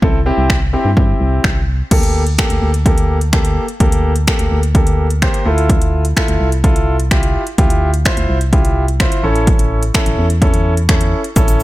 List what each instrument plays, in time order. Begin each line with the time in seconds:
0.02 fm bass C2, grand piano C4 E4 A4, kick
0.26 grand piano C4 E4 G4
0.38 fm bass C2
0.50 finger snap, kick
0.73 grand piano C4 E4 G4
0.85 fm bass G2
0.97 grand piano C4 E4 G4, kick
1.20 fm bass C2
1.44 fm bass C2, finger snap, kick
1.91 fm bass D2, grand piano A#3 G4 A4, kick, closed hi-hat, crash
2.03 closed hi-hat
2.27 closed hi-hat
2.38 grand piano A#3 G4 A4, finger snap, kick, closed hi-hat
2.50 fm bass D2, closed hi-hat
2.62 fm bass D2
2.74 closed hi-hat
2.86 grand piano A#3 G4 A4, kick, closed hi-hat
2.98 closed hi-hat
3.21 closed hi-hat
3.33 grand piano A#3 G4 A4, finger snap, kick, closed hi-hat
3.45 closed hi-hat
3.68 closed hi-hat
3.80 fm bass D2, grand piano A#3 G4 A4, kick, closed hi-hat
3.92 closed hi-hat
4.16 closed hi-hat
4.27 grand piano A#3 G4 A4, finger snap, kick, closed hi-hat
4.39 fm bass D2, closed hi-hat
4.51 fm bass D2
4.63 closed hi-hat
4.75 grand piano A#3 G4 A4, kick, closed hi-hat
4.87 closed hi-hat
5.10 closed hi-hat
5.22 grand piano A#3 G4 C5, finger snap, kick, closed hi-hat
5.34 closed hi-hat
5.46 fm bass D2, grand piano E4 F4 A4
5.58 closed hi-hat
5.69 kick, closed hi-hat
5.82 closed hi-hat
6.05 closed hi-hat
6.16 grand piano E4 F4 A4, finger snap, kick, closed hi-hat
6.28 fm bass D2, closed hi-hat
6.40 fm bass C2
6.52 closed hi-hat
6.64 grand piano E4 F4 A4, kick, closed hi-hat
6.76 closed hi-hat
7.00 closed hi-hat
7.11 grand piano E4 F4 G4, finger snap, kick, closed hi-hat
7.23 closed hi-hat
7.47 closed hi-hat
7.58 fm bass D2, grand piano E4 F4 G4, kick, closed hi-hat
7.70 closed hi-hat
7.94 closed hi-hat
8.05 grand piano E4 F4 C5, finger snap, kick, closed hi-hat
8.17 fm bass D2, closed hi-hat
8.29 fm bass C2
8.41 closed hi-hat
8.53 grand piano E4 F4 G4, kick, closed hi-hat
8.65 closed hi-hat
8.88 closed hi-hat
9.00 grand piano E4 F4 C5, finger snap, kick, closed hi-hat
9.12 closed hi-hat
9.24 fm bass A1, grand piano C#4 E4 A4
9.36 closed hi-hat
9.47 kick, closed hi-hat
9.59 closed hi-hat
9.83 closed hi-hat
9.94 grand piano C#4 E4 A4, finger snap, kick, closed hi-hat
10.06 fm bass A1, closed hi-hat
10.18 fm bass E2
10.30 closed hi-hat
10.41 grand piano C#4 E4 A4, kick, closed hi-hat
10.54 closed hi-hat
10.77 closed hi-hat
10.89 grand piano C#4 E4 A4, finger snap, kick, closed hi-hat
11.01 closed hi-hat
11.24 closed hi-hat
11.36 fm bass A1, grand piano C#4 E4 A4, kick, closed hi-hat, shaker
11.48 closed hi-hat, shaker
11.60 shaker